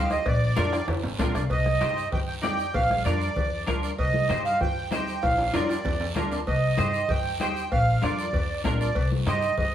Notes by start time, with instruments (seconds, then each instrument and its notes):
Already playing: upright bass D#2, clean electric guitar D#4 G4 C5, accordion F5
0.10 accordion D#5, bombo rim, high conga, short guiro
0.26 upright bass A#1, accordion D5, bombo low, bombo rim, cowbell, high conga, long guiro
0.56 upright bass F2, clean electric guitar D4 F4 A#4, bombo rim, cowbell, high conga, short guiro
0.72 bombo rim, high timbale, short guiro
0.88 upright bass F2, bombo rim, cowbell, high conga, low conga, high timbale, long guiro
1.03 upright bass G#1, low timbale
1.19 upright bass A#1, clean electric guitar D4 F4 A#4, bombo low, bombo rim, cowbell, high conga, low timbale, short guiro
1.34 upright bass C2, accordion D5, bombo rim, low timbale, short guiro
1.50 upright bass C2, accordion D#5, bombo low, cowbell, long guiro
1.66 bombo rim, high conga
1.80 upright bass G2, clean electric guitar D#4 G4 C5, bombo rim, cowbell, high conga, short guiro
1.97 short guiro
2.12 upright bass G2, accordion G5, bombo low, cowbell, low conga, long guiro
2.28 accordion G5
2.42 upright bass F2, clean electric guitar D#4 G4 D5, accordion G5, bombo rim, cowbell, high conga, low timbale, short guiro
2.59 short guiro
2.74 upright bass A#1, accordion F5, bombo low, cowbell, low conga, long guiro
2.90 bombo rim, high conga
3.05 upright bass F2, clean electric guitar D4 F4 A#4, accordion D5, bombo rim, cowbell, high conga, short guiro
3.21 short guiro
3.36 upright bass F2, bombo low, cowbell, low conga, long guiro
3.67 upright bass D2, clean electric guitar D4 F4 A#4, bombo low, bombo rim, cowbell, high conga, short guiro
3.83 accordion D5, short guiro
3.98 upright bass C2, accordion D#5, bombo low, cowbell, long guiro
4.14 high conga
4.29 upright bass G2, clean electric guitar D#4 G4 C5, bombo rim, cowbell, high conga, short guiro
4.45 accordion F5, short guiro
4.61 upright bass G2, accordion G5, bombo low, cowbell, low conga, long guiro
4.91 upright bass D#2, clean electric guitar D#4 G4 C5, accordion G5, bombo rim, cowbell, high conga, low timbale, short guiro
5.08 short guiro
5.23 upright bass A#1, accordion F5, bombo low, cowbell, high timbale, long guiro
5.38 high timbale
5.53 upright bass F2, clean electric guitar D4 F4 A#4, accordion D5, bombo rim, cowbell, high conga, high timbale, short guiro
5.69 high timbale, short guiro
5.85 upright bass F2, bombo low, cowbell, low conga, low timbale, long guiro
6.00 low timbale
6.15 upright bass D2, clean electric guitar D4 F4 A#4, bombo rim, cowbell, high conga, low conga, short guiro
6.32 accordion D5, low timbale, short guiro
6.47 upright bass C2, accordion D#5, bombo low, cowbell, long guiro
6.77 upright bass G2, clean electric guitar D#4 G4 C5, bombo rim, cowbell, high conga, short guiro
6.94 short guiro
7.09 upright bass G2, accordion G5, bombo low, cowbell, low conga, long guiro
7.40 upright bass D#2, clean electric guitar D#4 G4 C5, accordion G5, bombo rim, cowbell, high conga, short guiro
7.56 short guiro
7.72 upright bass A#1, accordion F5, bombo low, cowbell, long guiro
8.02 upright bass F2, clean electric guitar D4 F4 A#4, accordion D5, bombo rim, cowbell, high conga, short guiro
8.19 short guiro
8.33 upright bass F2, bombo low, cowbell, low conga, long guiro
8.64 upright bass A#1, clean electric guitar D4 F4 A#4, bombo low, bombo rim, cowbell, high conga, low timbale, short guiro
8.80 accordion D5, short guiro
8.95 upright bass C2, bombo low, cowbell, long guiro
9.12 high conga
9.26 upright bass G2, clean electric guitar D#4 G4 C5, accordion D#5, bombo rim, cowbell, high conga, short guiro
9.42 short guiro
9.58 upright bass G2, accordion D#5, bombo low, cowbell, low conga, long guiro